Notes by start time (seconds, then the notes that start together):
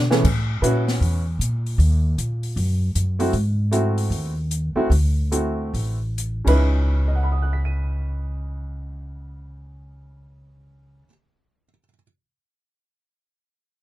Already playing: B2 D3 D4
0.10 E3 A3 B3 C#4 G#4, snare
0.24 A2, kick, crash
0.62 A#2 C#4 E4 F#4 B4, closed hi-hat
0.88 snare, open hi-hat
1.01 E2, open hi-hat
1.39 A#2, closed hi-hat
1.66 open hi-hat
1.78 D#2, open hi-hat
2.18 A#2, closed hi-hat
2.43 open hi-hat
2.56 F#2, open hi-hat
2.95 F#2, closed hi-hat
3.19 A3 C4 E4 F#4, open hi-hat
3.33 G#2, open hi-hat
3.71 A3 C4 E4 F#4, closed hi-hat
3.98 open hi-hat
4.10 D#2, open hi-hat
4.51 closed hi-hat
4.75 A3 C4 E4 F#4, muted upright bass stroke
4.90 D2, open hi-hat
5.32 A3 C4 E4 F#4, closed hi-hat
5.74 A1, open hi-hat
6.18 closed hi-hat
6.45 C#2 C#3 C#4 D#4 E4 B4, kick, crash
7.08 D#5
7.15 F#5
7.23 B5
7.32 D#6
7.42 F#6
7.53 B6
7.65 D#7